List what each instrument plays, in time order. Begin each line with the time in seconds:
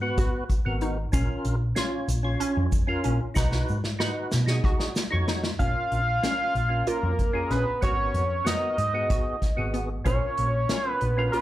Already playing: picked electric bass G#2
0.01 tonewheel organ B3 F#4 B4
0.18 synth arpeggio sound F#4, kick, closed hi-hat, shaker
0.50 kick, closed hi-hat, shaker
0.65 picked electric bass G#1, tonewheel organ B3 F#4 A#4
0.81 synth arpeggio sound D#4, closed hi-hat
1.12 picked electric bass A#1, tonewheel organ C#4 F4 A#4, synth arpeggio sound C#4, kick, closed hi-hat, shaker
1.45 picked electric bass A#1, closed hi-hat
1.75 tonewheel organ C#4 F4 C#5, synth arpeggio sound F4, snare, closed hi-hat
2.08 picked electric bass A#1, closed hi-hat, shaker
2.23 tonewheel organ C#4 F4 C#5
2.40 synth arpeggio sound C#4, closed hi-hat, shaker
2.57 picked electric bass F2
2.72 kick, closed hi-hat, shaker
2.87 tonewheel organ C#4 F4 A#4
3.04 picked electric bass A#1, synth arpeggio sound C#4, closed hi-hat
3.34 picked electric bass B1, tonewheel organ D#4 F#4 B4, synth arpeggio sound D#4, kick, snare, shaker
3.52 snare
3.69 picked electric bass G#2, shaker
3.84 snare
3.99 tonewheel organ D#4 F#4 B4, synth arpeggio sound D#4, snare
4.32 picked electric bass B2, snare, shaker
4.46 tonewheel organ D#4 F#4 G#4, snare
4.64 synth arpeggio sound F#4, kick
4.80 snare
4.96 snare, shaker
5.11 picked electric bass F2, tonewheel organ D#4 F#4 C#5
5.28 synth arpeggio sound D#4, snare
5.44 snare
5.59 picked electric bass A#1, tonewheel organ C#4 F4 A#4, synth arpeggio sound C#4, analog synth lead F5, kick, closed hi-hat
5.92 picked electric bass A#1, closed hi-hat
6.22 tonewheel organ C#4 F4 A#4, synth arpeggio sound C#4, snare, closed hi-hat
6.55 picked electric bass A#1, closed hi-hat
6.69 tonewheel organ C#4 F4 A#4
6.87 synth arpeggio sound F4, analog synth lead A#4, closed hi-hat
7.03 picked electric bass F2
7.19 kick, closed hi-hat
7.33 tonewheel organ C#4 F4 G#4
7.51 picked electric bass A#1, synth arpeggio sound C#4, analog synth lead B4, snare, closed hi-hat
7.81 picked electric bass G#1, tonewheel organ B3 F#4 A#4, synth arpeggio sound F#4, analog synth lead C#5, kick, closed hi-hat
8.14 picked electric bass F2, closed hi-hat
8.44 tonewheel organ B3 F#4 A#4, synth arpeggio sound D#4, analog synth lead D#5, snare, closed hi-hat
8.78 picked electric bass G#2, closed hi-hat
8.94 tonewheel organ B3 F#4 G#4
9.10 synth arpeggio sound F#4, kick, closed hi-hat
9.42 kick, snare, closed hi-hat
9.56 picked electric bass G#1, tonewheel organ B3 F#4 G#4
9.74 synth arpeggio sound B3, closed hi-hat
10.05 picked electric bass A#1, tonewheel organ C#4 F4 A#4, synth arpeggio sound C#4, analog synth lead C#5, kick, closed hi-hat
10.37 picked electric bass A#1, closed hi-hat
10.69 tonewheel organ C#4 F4 A#4, synth arpeggio sound C#4, snare, closed hi-hat
10.90 analog synth lead B4
11.01 picked electric bass A#1, closed hi-hat
11.17 tonewheel organ C#4 F4 A#4
11.32 synth arpeggio sound F4, analog synth lead B4, closed hi-hat